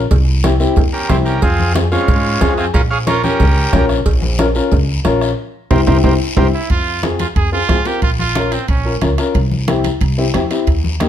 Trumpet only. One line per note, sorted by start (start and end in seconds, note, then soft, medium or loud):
0.93 1.09 C#4 medium
1.09 1.17 E4 medium
1.26 1.41 C#4 medium
1.43 1.73 C4 medium
1.93 2.54 G#3 medium
2.59 2.66 C4 medium
2.74 2.82 C#4 medium
2.92 2.99 G#4 medium
3.08 3.23 F4 medium
3.24 3.86 C#4 medium
6.54 6.69 E4 medium
6.71 7.01 F4 medium
7.20 7.27 F4 medium
7.37 7.52 G#4 medium
7.53 7.88 F4 loud
7.87 8.02 G4 medium
8.03 8.10 F4 medium
8.19 8.54 F4 medium
8.53 8.69 C4 medium
8.69 9.00 C#4 medium